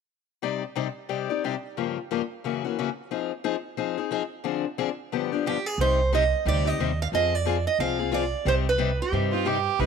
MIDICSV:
0, 0, Header, 1, 5, 480
1, 0, Start_track
1, 0, Key_signature, -3, "minor"
1, 0, Tempo, 334821
1, 602, Time_signature, 4, 2, 24, 8
1, 14137, End_track
2, 0, Start_track
2, 0, Title_t, "Steel-string acoustic guitar"
2, 0, Program_c, 0, 25
2, 7844, Note_on_c, 0, 67, 74
2, 8118, Note_off_c, 0, 67, 0
2, 8118, Note_on_c, 0, 68, 69
2, 8307, Note_off_c, 0, 68, 0
2, 8331, Note_on_c, 0, 72, 89
2, 8758, Note_off_c, 0, 72, 0
2, 8812, Note_on_c, 0, 75, 80
2, 9238, Note_off_c, 0, 75, 0
2, 9295, Note_on_c, 0, 74, 89
2, 9566, Note_off_c, 0, 74, 0
2, 9566, Note_on_c, 0, 75, 77
2, 10042, Note_off_c, 0, 75, 0
2, 10065, Note_on_c, 0, 77, 91
2, 10137, Note_off_c, 0, 77, 0
2, 10246, Note_on_c, 0, 75, 95
2, 10534, Note_off_c, 0, 75, 0
2, 10534, Note_on_c, 0, 74, 89
2, 10991, Note_off_c, 0, 74, 0
2, 10997, Note_on_c, 0, 75, 82
2, 11167, Note_off_c, 0, 75, 0
2, 11185, Note_on_c, 0, 77, 80
2, 11669, Note_off_c, 0, 77, 0
2, 11674, Note_on_c, 0, 74, 86
2, 12153, Note_off_c, 0, 74, 0
2, 12160, Note_on_c, 0, 72, 90
2, 12231, Note_off_c, 0, 72, 0
2, 12458, Note_on_c, 0, 71, 82
2, 12880, Note_off_c, 0, 71, 0
2, 12930, Note_on_c, 0, 67, 66
2, 14137, Note_off_c, 0, 67, 0
2, 14137, End_track
3, 0, Start_track
3, 0, Title_t, "Violin"
3, 0, Program_c, 1, 40
3, 13374, Note_on_c, 1, 65, 75
3, 13586, Note_on_c, 1, 67, 82
3, 13607, Note_off_c, 1, 65, 0
3, 14057, Note_on_c, 1, 71, 98
3, 14079, Note_off_c, 1, 67, 0
3, 14137, Note_off_c, 1, 71, 0
3, 14137, End_track
4, 0, Start_track
4, 0, Title_t, "Steel-string acoustic guitar"
4, 0, Program_c, 2, 25
4, 604, Note_on_c, 2, 48, 51
4, 608, Note_on_c, 2, 55, 57
4, 612, Note_on_c, 2, 67, 63
4, 614, Note_on_c, 2, 60, 57
4, 614, Note_on_c, 2, 63, 70
4, 621, Note_on_c, 2, 74, 67
4, 891, Note_off_c, 2, 48, 0
4, 893, Note_off_c, 2, 55, 0
4, 896, Note_off_c, 2, 67, 0
4, 897, Note_off_c, 2, 60, 0
4, 897, Note_off_c, 2, 63, 0
4, 900, Note_off_c, 2, 74, 0
4, 1082, Note_on_c, 2, 48, 78
4, 1089, Note_on_c, 2, 55, 74
4, 1093, Note_on_c, 2, 63, 77
4, 1095, Note_on_c, 2, 60, 75
4, 1098, Note_on_c, 2, 74, 84
4, 1100, Note_on_c, 2, 67, 73
4, 1236, Note_off_c, 2, 48, 0
4, 1239, Note_off_c, 2, 55, 0
4, 1241, Note_off_c, 2, 63, 0
4, 1243, Note_off_c, 2, 60, 0
4, 1244, Note_off_c, 2, 74, 0
4, 1245, Note_off_c, 2, 67, 0
4, 1559, Note_on_c, 2, 48, 50
4, 1561, Note_on_c, 2, 55, 54
4, 1565, Note_on_c, 2, 60, 63
4, 1566, Note_on_c, 2, 63, 58
4, 1568, Note_on_c, 2, 67, 68
4, 1569, Note_on_c, 2, 74, 57
4, 1834, Note_off_c, 2, 48, 0
4, 1835, Note_off_c, 2, 55, 0
4, 1836, Note_off_c, 2, 74, 0
4, 1837, Note_off_c, 2, 60, 0
4, 1838, Note_off_c, 2, 63, 0
4, 1839, Note_off_c, 2, 67, 0
4, 1853, Note_on_c, 2, 74, 46
4, 1864, Note_on_c, 2, 67, 50
4, 1874, Note_on_c, 2, 63, 44
4, 1881, Note_on_c, 2, 60, 37
4, 2039, Note_off_c, 2, 74, 0
4, 2044, Note_off_c, 2, 67, 0
4, 2049, Note_off_c, 2, 63, 0
4, 2053, Note_off_c, 2, 60, 0
4, 2064, Note_on_c, 2, 48, 65
4, 2070, Note_on_c, 2, 55, 67
4, 2071, Note_on_c, 2, 63, 64
4, 2072, Note_on_c, 2, 60, 76
4, 2074, Note_on_c, 2, 74, 76
4, 2075, Note_on_c, 2, 67, 72
4, 2208, Note_off_c, 2, 48, 0
4, 2211, Note_off_c, 2, 55, 0
4, 2211, Note_off_c, 2, 63, 0
4, 2212, Note_off_c, 2, 60, 0
4, 2213, Note_off_c, 2, 67, 0
4, 2213, Note_off_c, 2, 74, 0
4, 2538, Note_on_c, 2, 43, 62
4, 2542, Note_on_c, 2, 49, 63
4, 2544, Note_on_c, 2, 53, 65
4, 2551, Note_on_c, 2, 58, 60
4, 2551, Note_on_c, 2, 65, 61
4, 2552, Note_on_c, 2, 67, 66
4, 2820, Note_off_c, 2, 43, 0
4, 2822, Note_off_c, 2, 49, 0
4, 2823, Note_off_c, 2, 53, 0
4, 2826, Note_off_c, 2, 58, 0
4, 2827, Note_off_c, 2, 65, 0
4, 2827, Note_off_c, 2, 67, 0
4, 3021, Note_on_c, 2, 43, 75
4, 3022, Note_on_c, 2, 49, 70
4, 3024, Note_on_c, 2, 53, 72
4, 3027, Note_on_c, 2, 58, 83
4, 3033, Note_on_c, 2, 65, 82
4, 3033, Note_on_c, 2, 67, 77
4, 3167, Note_off_c, 2, 43, 0
4, 3168, Note_off_c, 2, 49, 0
4, 3169, Note_off_c, 2, 53, 0
4, 3170, Note_off_c, 2, 58, 0
4, 3173, Note_off_c, 2, 65, 0
4, 3173, Note_off_c, 2, 67, 0
4, 3501, Note_on_c, 2, 42, 58
4, 3508, Note_on_c, 2, 49, 63
4, 3510, Note_on_c, 2, 52, 66
4, 3511, Note_on_c, 2, 61, 66
4, 3515, Note_on_c, 2, 58, 59
4, 3522, Note_on_c, 2, 66, 64
4, 3767, Note_off_c, 2, 42, 0
4, 3770, Note_off_c, 2, 49, 0
4, 3772, Note_off_c, 2, 52, 0
4, 3772, Note_off_c, 2, 61, 0
4, 3774, Note_off_c, 2, 58, 0
4, 3777, Note_off_c, 2, 66, 0
4, 3792, Note_on_c, 2, 66, 55
4, 3800, Note_on_c, 2, 61, 48
4, 3814, Note_on_c, 2, 58, 40
4, 3821, Note_on_c, 2, 52, 41
4, 3970, Note_off_c, 2, 66, 0
4, 3974, Note_off_c, 2, 61, 0
4, 3981, Note_off_c, 2, 58, 0
4, 3984, Note_off_c, 2, 52, 0
4, 3993, Note_on_c, 2, 42, 62
4, 3993, Note_on_c, 2, 49, 69
4, 3996, Note_on_c, 2, 58, 71
4, 4000, Note_on_c, 2, 52, 69
4, 4001, Note_on_c, 2, 61, 79
4, 4006, Note_on_c, 2, 66, 67
4, 4134, Note_off_c, 2, 42, 0
4, 4134, Note_off_c, 2, 49, 0
4, 4135, Note_off_c, 2, 58, 0
4, 4137, Note_off_c, 2, 52, 0
4, 4138, Note_off_c, 2, 61, 0
4, 4140, Note_off_c, 2, 66, 0
4, 4455, Note_on_c, 2, 53, 56
4, 4458, Note_on_c, 2, 60, 61
4, 4464, Note_on_c, 2, 63, 68
4, 4468, Note_on_c, 2, 68, 68
4, 4740, Note_off_c, 2, 53, 0
4, 4741, Note_off_c, 2, 60, 0
4, 4744, Note_off_c, 2, 63, 0
4, 4746, Note_off_c, 2, 68, 0
4, 4932, Note_on_c, 2, 60, 73
4, 4935, Note_on_c, 2, 53, 78
4, 4938, Note_on_c, 2, 63, 86
4, 4944, Note_on_c, 2, 68, 86
4, 5084, Note_off_c, 2, 60, 0
4, 5085, Note_off_c, 2, 53, 0
4, 5087, Note_off_c, 2, 63, 0
4, 5090, Note_off_c, 2, 68, 0
4, 5407, Note_on_c, 2, 60, 67
4, 5408, Note_on_c, 2, 53, 62
4, 5420, Note_on_c, 2, 68, 69
4, 5421, Note_on_c, 2, 63, 67
4, 5681, Note_off_c, 2, 53, 0
4, 5681, Note_off_c, 2, 60, 0
4, 5682, Note_off_c, 2, 68, 0
4, 5688, Note_off_c, 2, 63, 0
4, 5699, Note_on_c, 2, 68, 51
4, 5708, Note_on_c, 2, 63, 49
4, 5727, Note_on_c, 2, 60, 43
4, 5881, Note_off_c, 2, 60, 0
4, 5884, Note_off_c, 2, 63, 0
4, 5884, Note_off_c, 2, 68, 0
4, 5888, Note_on_c, 2, 53, 65
4, 5898, Note_on_c, 2, 60, 73
4, 5902, Note_on_c, 2, 63, 82
4, 5909, Note_on_c, 2, 68, 92
4, 6042, Note_off_c, 2, 53, 0
4, 6047, Note_off_c, 2, 60, 0
4, 6049, Note_off_c, 2, 63, 0
4, 6053, Note_off_c, 2, 68, 0
4, 6361, Note_on_c, 2, 50, 62
4, 6366, Note_on_c, 2, 53, 63
4, 6371, Note_on_c, 2, 60, 73
4, 6376, Note_on_c, 2, 62, 65
4, 6376, Note_on_c, 2, 68, 60
4, 6653, Note_off_c, 2, 50, 0
4, 6656, Note_off_c, 2, 53, 0
4, 6658, Note_off_c, 2, 60, 0
4, 6660, Note_off_c, 2, 62, 0
4, 6661, Note_off_c, 2, 68, 0
4, 6854, Note_on_c, 2, 50, 78
4, 6855, Note_on_c, 2, 53, 70
4, 6857, Note_on_c, 2, 60, 79
4, 6864, Note_on_c, 2, 68, 88
4, 6867, Note_on_c, 2, 62, 74
4, 7005, Note_off_c, 2, 50, 0
4, 7005, Note_off_c, 2, 53, 0
4, 7006, Note_off_c, 2, 60, 0
4, 7010, Note_off_c, 2, 68, 0
4, 7011, Note_off_c, 2, 62, 0
4, 7342, Note_on_c, 2, 43, 61
4, 7347, Note_on_c, 2, 53, 64
4, 7349, Note_on_c, 2, 50, 60
4, 7356, Note_on_c, 2, 59, 68
4, 7357, Note_on_c, 2, 62, 58
4, 7358, Note_on_c, 2, 67, 70
4, 7608, Note_off_c, 2, 43, 0
4, 7608, Note_off_c, 2, 67, 0
4, 7611, Note_off_c, 2, 53, 0
4, 7612, Note_off_c, 2, 50, 0
4, 7615, Note_off_c, 2, 59, 0
4, 7615, Note_off_c, 2, 62, 0
4, 7625, Note_on_c, 2, 67, 44
4, 7634, Note_on_c, 2, 62, 49
4, 7644, Note_on_c, 2, 59, 42
4, 7653, Note_on_c, 2, 53, 43
4, 7807, Note_off_c, 2, 67, 0
4, 7812, Note_off_c, 2, 62, 0
4, 7817, Note_off_c, 2, 59, 0
4, 7821, Note_off_c, 2, 53, 0
4, 7830, Note_on_c, 2, 43, 67
4, 7831, Note_on_c, 2, 50, 70
4, 7839, Note_on_c, 2, 59, 70
4, 7841, Note_on_c, 2, 67, 83
4, 7842, Note_on_c, 2, 53, 69
4, 7844, Note_on_c, 2, 62, 79
4, 7973, Note_off_c, 2, 43, 0
4, 7973, Note_off_c, 2, 50, 0
4, 7977, Note_off_c, 2, 59, 0
4, 7979, Note_off_c, 2, 53, 0
4, 7979, Note_off_c, 2, 67, 0
4, 7980, Note_off_c, 2, 62, 0
4, 8311, Note_on_c, 2, 48, 61
4, 8317, Note_on_c, 2, 60, 64
4, 8319, Note_on_c, 2, 55, 61
4, 8327, Note_on_c, 2, 63, 65
4, 8327, Note_on_c, 2, 67, 66
4, 8588, Note_off_c, 2, 48, 0
4, 8590, Note_off_c, 2, 60, 0
4, 8592, Note_off_c, 2, 55, 0
4, 8595, Note_off_c, 2, 67, 0
4, 8596, Note_off_c, 2, 63, 0
4, 8780, Note_on_c, 2, 48, 74
4, 8783, Note_on_c, 2, 55, 83
4, 8790, Note_on_c, 2, 60, 79
4, 8792, Note_on_c, 2, 63, 89
4, 8800, Note_on_c, 2, 67, 88
4, 8927, Note_off_c, 2, 48, 0
4, 8929, Note_off_c, 2, 55, 0
4, 8933, Note_off_c, 2, 60, 0
4, 8933, Note_off_c, 2, 63, 0
4, 8937, Note_off_c, 2, 67, 0
4, 9254, Note_on_c, 2, 48, 66
4, 9260, Note_on_c, 2, 55, 53
4, 9263, Note_on_c, 2, 60, 63
4, 9266, Note_on_c, 2, 63, 73
4, 9269, Note_on_c, 2, 67, 74
4, 9518, Note_off_c, 2, 67, 0
4, 9523, Note_off_c, 2, 48, 0
4, 9526, Note_off_c, 2, 55, 0
4, 9528, Note_off_c, 2, 60, 0
4, 9529, Note_off_c, 2, 63, 0
4, 9535, Note_on_c, 2, 67, 54
4, 9548, Note_on_c, 2, 63, 45
4, 9561, Note_on_c, 2, 60, 36
4, 9721, Note_off_c, 2, 67, 0
4, 9728, Note_off_c, 2, 63, 0
4, 9734, Note_off_c, 2, 60, 0
4, 9747, Note_on_c, 2, 48, 74
4, 9750, Note_on_c, 2, 55, 70
4, 9751, Note_on_c, 2, 60, 80
4, 9756, Note_on_c, 2, 67, 87
4, 9757, Note_on_c, 2, 63, 77
4, 9890, Note_off_c, 2, 48, 0
4, 9892, Note_off_c, 2, 55, 0
4, 9893, Note_off_c, 2, 60, 0
4, 9895, Note_off_c, 2, 63, 0
4, 9895, Note_off_c, 2, 67, 0
4, 10219, Note_on_c, 2, 53, 68
4, 10231, Note_on_c, 2, 65, 68
4, 10232, Note_on_c, 2, 60, 61
4, 10236, Note_on_c, 2, 68, 68
4, 10501, Note_off_c, 2, 53, 0
4, 10506, Note_off_c, 2, 65, 0
4, 10507, Note_off_c, 2, 60, 0
4, 10509, Note_off_c, 2, 68, 0
4, 10686, Note_on_c, 2, 53, 81
4, 10693, Note_on_c, 2, 60, 75
4, 10703, Note_on_c, 2, 65, 91
4, 10704, Note_on_c, 2, 68, 90
4, 10839, Note_off_c, 2, 53, 0
4, 10843, Note_off_c, 2, 60, 0
4, 10848, Note_off_c, 2, 65, 0
4, 10848, Note_off_c, 2, 68, 0
4, 11173, Note_on_c, 2, 53, 58
4, 11183, Note_on_c, 2, 60, 62
4, 11190, Note_on_c, 2, 65, 62
4, 11198, Note_on_c, 2, 68, 69
4, 11441, Note_off_c, 2, 53, 0
4, 11441, Note_off_c, 2, 68, 0
4, 11447, Note_off_c, 2, 60, 0
4, 11450, Note_off_c, 2, 65, 0
4, 11458, Note_on_c, 2, 68, 54
4, 11470, Note_on_c, 2, 65, 43
4, 11483, Note_on_c, 2, 60, 45
4, 11624, Note_off_c, 2, 60, 0
4, 11629, Note_off_c, 2, 65, 0
4, 11634, Note_off_c, 2, 68, 0
4, 11634, Note_on_c, 2, 53, 71
4, 11641, Note_on_c, 2, 60, 72
4, 11646, Note_on_c, 2, 65, 86
4, 11651, Note_on_c, 2, 68, 83
4, 11792, Note_off_c, 2, 53, 0
4, 11796, Note_off_c, 2, 60, 0
4, 11799, Note_off_c, 2, 65, 0
4, 11801, Note_off_c, 2, 68, 0
4, 12124, Note_on_c, 2, 48, 64
4, 12127, Note_on_c, 2, 55, 73
4, 12133, Note_on_c, 2, 60, 78
4, 12138, Note_on_c, 2, 63, 72
4, 12141, Note_on_c, 2, 67, 74
4, 12412, Note_off_c, 2, 48, 0
4, 12413, Note_off_c, 2, 55, 0
4, 12416, Note_off_c, 2, 60, 0
4, 12419, Note_off_c, 2, 63, 0
4, 12420, Note_off_c, 2, 67, 0
4, 12589, Note_on_c, 2, 48, 87
4, 12590, Note_on_c, 2, 55, 78
4, 12595, Note_on_c, 2, 60, 91
4, 12598, Note_on_c, 2, 63, 87
4, 12607, Note_on_c, 2, 67, 87
4, 12750, Note_off_c, 2, 48, 0
4, 12750, Note_off_c, 2, 55, 0
4, 12753, Note_off_c, 2, 60, 0
4, 12754, Note_off_c, 2, 63, 0
4, 12758, Note_off_c, 2, 67, 0
4, 13079, Note_on_c, 2, 48, 67
4, 13085, Note_on_c, 2, 55, 61
4, 13088, Note_on_c, 2, 60, 63
4, 13091, Note_on_c, 2, 63, 60
4, 13096, Note_on_c, 2, 67, 77
4, 13352, Note_off_c, 2, 67, 0
4, 13353, Note_off_c, 2, 48, 0
4, 13357, Note_off_c, 2, 55, 0
4, 13358, Note_off_c, 2, 60, 0
4, 13359, Note_off_c, 2, 63, 0
4, 13370, Note_on_c, 2, 67, 53
4, 13380, Note_on_c, 2, 63, 45
4, 13391, Note_on_c, 2, 60, 46
4, 13538, Note_off_c, 2, 60, 0
4, 13543, Note_off_c, 2, 63, 0
4, 13548, Note_off_c, 2, 67, 0
4, 13548, Note_on_c, 2, 48, 69
4, 13555, Note_on_c, 2, 60, 72
4, 13558, Note_on_c, 2, 55, 85
4, 13560, Note_on_c, 2, 63, 80
4, 13565, Note_on_c, 2, 67, 81
4, 13708, Note_off_c, 2, 48, 0
4, 13712, Note_off_c, 2, 60, 0
4, 13714, Note_off_c, 2, 55, 0
4, 13715, Note_off_c, 2, 63, 0
4, 13717, Note_off_c, 2, 67, 0
4, 14045, Note_on_c, 2, 55, 72
4, 14046, Note_on_c, 2, 48, 62
4, 14049, Note_on_c, 2, 60, 69
4, 14057, Note_on_c, 2, 63, 66
4, 14059, Note_on_c, 2, 67, 62
4, 14137, Note_off_c, 2, 48, 0
4, 14137, Note_off_c, 2, 55, 0
4, 14137, Note_off_c, 2, 60, 0
4, 14137, Note_off_c, 2, 63, 0
4, 14137, Note_off_c, 2, 67, 0
4, 14137, End_track
5, 0, Start_track
5, 0, Title_t, "Upright bass"
5, 0, Program_c, 3, 32
5, 8285, Note_on_c, 3, 36, 77
5, 9054, Note_off_c, 3, 36, 0
5, 9253, Note_on_c, 3, 38, 70
5, 9658, Note_off_c, 3, 38, 0
5, 9735, Note_on_c, 3, 39, 75
5, 10140, Note_off_c, 3, 39, 0
5, 10206, Note_on_c, 3, 41, 76
5, 10973, Note_off_c, 3, 41, 0
5, 11163, Note_on_c, 3, 36, 69
5, 11931, Note_off_c, 3, 36, 0
5, 12118, Note_on_c, 3, 36, 84
5, 12888, Note_off_c, 3, 36, 0
5, 13076, Note_on_c, 3, 43, 74
5, 13846, Note_off_c, 3, 43, 0
5, 14033, Note_on_c, 3, 36, 83
5, 14137, Note_off_c, 3, 36, 0
5, 14137, End_track
0, 0, End_of_file